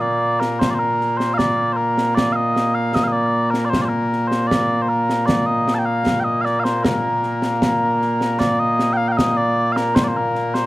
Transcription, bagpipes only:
0.00 10.66 A#2 medium
0.00 10.66 A#3 medium
0.00 0.40 D5 medium
0.40 0.60 A#4 medium
0.60 0.70 C5 medium
0.70 0.74 D5 medium
0.74 0.79 C5 medium
0.79 1.18 A#4 medium
1.18 1.34 C5 medium
1.34 1.38 F5 loud
1.38 1.73 D5 loud
1.73 2.15 A#4 medium
1.73 1.77 C5 medium
2.15 2.32 D5 loud
2.32 2.74 D#5 medium
2.32 2.36 F5 medium
2.74 2.95 F5 medium
2.95 3.04 D#5 medium
3.04 3.12 D#5 medium
3.04 3.08 F5 medium
3.12 3.51 D5 medium
3.51 3.65 A#4 medium
3.65 3.70 D5 medium
3.70 3.81 C5 medium
3.81 3.89 C5 medium
3.81 3.85 D5 medium
3.89 4.28 A#4 medium
4.28 4.47 C5 medium
4.47 4.82 D5 medium
4.82 4.89 C5 medium
4.89 5.26 A#4 medium
5.26 5.46 D5 medium
5.46 5.74 D#5 medium
5.74 5.79 A5 medium
5.79 5.85 G5 medium
5.85 6.20 F5 medium
6.20 6.24 G5 medium
6.24 6.41 D#5 medium
6.41 6.60 D5 medium
6.41 6.45 F5 medium
6.60 6.64 F5 medium
6.64 6.84 C5 medium
6.84 8.39 A#4 medium
8.39 8.59 D5 loud
8.59 8.93 D#5 loud
8.93 8.97 G5 loud
8.97 9.08 F5 loud
9.08 9.17 F5 medium
9.08 9.12 G5 medium
9.17 9.37 D#5 medium
9.37 9.72 D5 loud
9.72 9.77 F5 medium
9.77 9.95 A#4 medium
9.95 10.04 C5 loud
10.04 10.08 D5 medium
10.08 10.17 C5 medium
10.17 10.54 A#4 medium
10.54 10.66 C5 medium

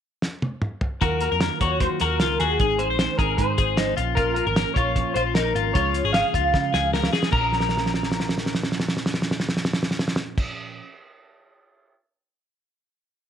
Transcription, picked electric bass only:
1.02 1.27 D#2 loud
1.32 1.48 F2 medium
1.61 1.86 D#2 loud
2.01 2.21 D#2 medium
2.21 2.37 C#2 medium
2.40 2.57 D#2 medium
2.60 2.89 G#1 medium
2.89 3.06 A#1 loud
3.19 3.36 G#1 loud
3.38 3.55 G#2 medium
3.59 3.92 G#1 medium
3.98 4.40 A#1 loud
4.47 4.64 G#1 medium
4.76 5.01 A#1 medium
5.15 5.32 A#1 medium
5.36 5.53 A#1 medium
5.55 5.72 G#1 medium
5.75 6.00 C#2 loud
6.04 6.21 G#1 medium
6.34 6.51 C#2 medium
6.54 6.71 C#3 loud
6.73 7.07 C#2 medium
7.33 10.42 A#1 medium

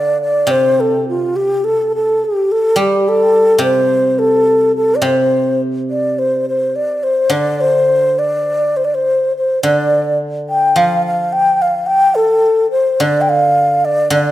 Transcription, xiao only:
0.00 0.21 D5 medium
0.22 0.52 D5 medium
0.51 0.82 C5 medium
0.80 1.08 A4 medium
1.09 1.37 F4 medium
1.36 1.66 G4 medium
1.64 1.93 A4 medium
1.95 2.26 A4 medium
2.25 2.53 G4 medium
2.52 2.79 A4 medium
2.79 3.10 G4 medium
3.08 3.63 A4 medium
3.63 4.20 C5 medium
4.19 4.75 A4 medium
4.76 4.97 A4 medium
4.95 5.05 D5 soft
5.03 5.61 C5 medium
5.90 6.20 D5 medium
6.19 6.46 C5 medium
6.49 6.77 C5 medium
6.76 7.05 D5 medium
7.03 7.34 C5 medium
7.32 7.62 D5 medium
7.61 8.20 C5 medium
8.19 8.78 D5 medium
8.77 8.86 C5 medium
8.84 8.96 D5 medium
8.94 9.37 C5 medium
9.37 9.63 C5 medium
9.64 10.17 D5 medium
10.49 10.79 G5 medium
10.78 11.06 F5 medium
11.06 11.34 F5 medium
11.32 11.63 G5 medium
11.62 11.88 F5 medium
11.86 12.17 G5 medium
12.15 12.70 A4 medium
12.71 13.02 C5 medium
13.00 13.23 D5 medium
13.21 13.31 G5 medium
13.29 13.86 F5 medium
13.85 14.12 D5 medium
14.13 14.31 D5 medium

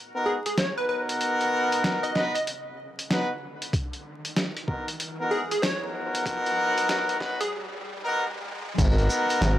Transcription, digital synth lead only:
0.26 0.39 G#4 medium
0.46 0.53 G#4 medium
0.58 0.74 C#5 loud
0.78 0.85 B4 medium
0.89 1.02 B4 medium
2.03 2.13 D#5 medium
2.15 2.28 D#5 medium
2.35 2.42 D#5 medium
5.31 5.44 G#4 medium
5.52 5.59 G#4 medium
5.62 5.79 C#5 loud
7.41 7.48 G#4 medium

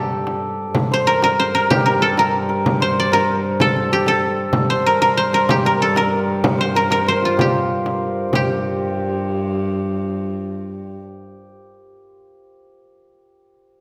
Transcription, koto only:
0.00 1.70 G4 medium
0.00 1.13 A4 medium
0.94 1.39 C5 medium
1.07 1.23 A#4 loud
1.24 1.54 A#4 loud
1.40 2.82 C5 loud
1.55 1.85 A#4 medium
1.70 3.74 G4 medium
1.86 2.08 A#4 medium
2.02 2.08 A4 medium
2.19 3.13 A#4 medium
2.82 4.54 C5 medium
3.00 4.60 D5 loud
3.13 3.67 A#4 loud
3.61 4.08 A4 loud
3.93 5.50 G4 medium
4.08 4.92 A4 medium
4.70 5.17 C5 medium
4.86 5.01 A#4 medium
5.02 5.34 A#4 medium
5.17 6.60 C5 loud
5.34 5.66 A#4 medium
5.50 7.41 G4 medium
5.66 5.88 A#4 medium
5.82 6.03 A4 medium
5.97 6.76 A#4 medium
6.61 7.08 C5 medium
6.76 6.91 A#4 medium
6.92 8.75 A#4 loud
7.08 8.80 C5 loud
7.25 9.44 F4 medium
7.41 8.35 G4 medium
8.35 11.70 G4 medium

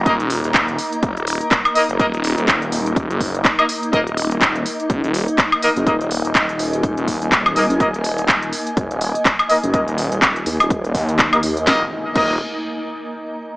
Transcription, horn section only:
0.06 0.13 A#3 medium
0.06 0.13 D#4 medium
0.06 0.13 A#4 medium
0.06 0.13 D#5 medium
1.75 1.83 A#3 medium
1.75 1.83 D#4 medium
1.75 1.83 A#4 medium
1.75 1.83 D#5 medium
2.00 2.07 A#3 medium
2.00 2.07 D#4 medium
2.00 2.07 A#4 medium
2.00 2.07 D#5 medium
3.59 3.64 A#3 medium
3.59 3.64 D#4 medium
3.59 3.64 A#4 medium
3.59 3.64 D#5 medium
3.93 4.00 A#3 medium
3.93 4.00 D#4 medium
3.93 4.00 A#4 medium
3.93 4.00 D#5 medium
5.62 5.70 A#3 medium
5.62 5.70 D#4 medium
5.62 5.70 A#4 medium
5.62 5.70 D#5 medium
5.87 5.94 A#3 medium
5.87 5.94 D#4 medium
5.87 5.94 A#4 medium
5.87 5.94 D#5 medium
7.56 7.63 A#3 medium
7.56 7.63 D#4 medium
7.56 7.63 A#4 medium
7.56 7.63 D#5 medium
7.80 7.87 A#3 medium
7.80 7.87 D#4 medium
7.80 7.87 A#4 medium
7.80 7.87 D#5 medium
9.50 9.57 A#3 medium
9.50 9.57 D#4 medium
9.50 9.57 A#4 medium
9.50 9.57 D#5 medium
9.74 9.81 A#3 medium
9.74 9.81 D#4 medium
9.74 9.81 A#4 medium
9.74 9.81 D#5 medium
11.33 11.38 A#3 medium
11.33 11.38 D#4 medium
11.33 11.38 A#4 medium
11.33 11.38 D#5 medium
11.67 11.82 A#3 medium
11.67 11.82 D#4 medium
11.67 11.82 A#4 medium
11.67 11.82 D#5 medium
12.16 12.34 A#3 medium
12.16 12.34 D#4 medium
12.16 12.34 A#4 medium
12.16 12.34 D#5 medium

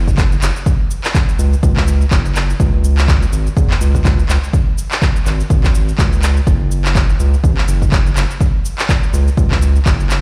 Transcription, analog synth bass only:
0.00 0.36 F#1 loud
0.42 0.51 F#1 medium
1.39 1.55 C#2 loud
1.63 2.05 C#2 loud
2.11 2.54 F#1 medium
2.60 3.26 C#2 loud
3.32 3.49 G#1 loud
3.57 3.73 E2 medium
3.81 4.23 C#2 loud
4.29 4.38 C#2 medium
5.26 5.42 G#1 loud
5.50 5.92 G#1 loud
5.98 6.41 C#2 medium
6.47 7.13 F#1 loud
7.20 7.36 C#2 loud
7.44 7.60 A1 medium
7.68 8.10 F#1 loud
8.16 8.25 F#1 medium
9.13 9.30 C#2 loud
9.37 9.80 C#2 loud
9.86 10.21 F#1 medium

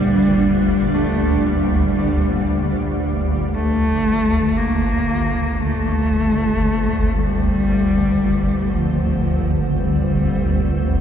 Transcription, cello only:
0.00 0.95 G3 loud
0.94 1.48 A3 medium
1.46 3.02 G3 medium
3.55 4.59 A3 loud
4.57 5.62 A#3 loud
5.61 7.17 A3 loud
7.15 8.74 G3 loud
8.72 9.77 F3 medium
9.75 11.01 G3 medium

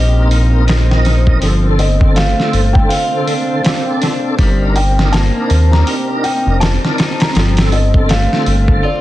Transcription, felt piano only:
0.00 1.02 D#5 medium
1.79 2.17 D#5 medium
2.16 2.77 F5 loud
2.73 2.90 G5 loud
2.88 3.96 F5 medium
4.76 5.10 G5 medium
5.12 5.67 A5 loud
5.71 6.06 A#5 loud
6.23 6.62 G5 medium
6.60 7.21 A5 loud
7.20 7.54 A#5 loud
7.72 8.10 D#5 medium
8.10 8.86 F5 loud
8.84 9.01 D5 medium

